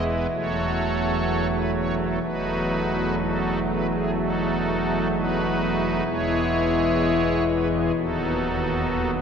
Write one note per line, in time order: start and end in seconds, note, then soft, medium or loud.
0.00 0.27 E1 medium
0.00 0.27 E2 medium
0.00 0.27 G#3 medium
0.00 0.27 B3 medium
0.00 0.27 E4 medium
0.06 0.27 B4 loud
0.31 2.18 E1 medium
0.31 2.18 E2 medium
0.31 2.19 F#3 medium
0.31 2.19 A3 medium
0.31 1.47 F#4 medium
0.31 1.47 A4 medium
0.31 1.47 C#5 loud
1.51 1.71 B4 loud
1.74 1.95 C#5 loud
1.98 2.18 A4 loud
2.22 6.01 E1 medium
2.22 6.01 E2 medium
2.22 6.02 F#3 medium
2.22 6.02 A3 medium
2.22 3.16 D#4 medium
2.22 3.15 F#4 medium
2.22 3.15 B4 loud
3.19 3.59 D#4 medium
3.19 3.59 F#4 medium
3.19 3.59 A4 loud
3.67 3.87 B4 loud
3.91 4.11 G#4 loud
4.15 5.08 D#4 medium
4.15 5.08 F#4 medium
4.15 5.07 A4 loud
5.12 6.03 D#4 medium
5.12 6.03 F#4 medium
5.12 6.03 B4 loud
6.06 7.91 E1 medium
6.06 7.91 E2 medium
6.06 7.91 E3 medium
6.06 7.91 G#3 medium
6.06 7.91 B3 medium
6.06 7.44 E4 loud
6.06 7.44 G#4 loud
6.06 7.44 C#5 loud
7.48 7.68 B4 loud
7.72 7.92 G#4 loud
7.96 9.22 D#1 medium
7.96 9.22 D#2 medium
7.96 9.22 F#3 medium
7.96 9.22 B3 medium
7.96 9.11 D#4 medium
7.96 9.11 F#4 medium
7.96 9.10 A4 loud
9.15 9.22 B4 loud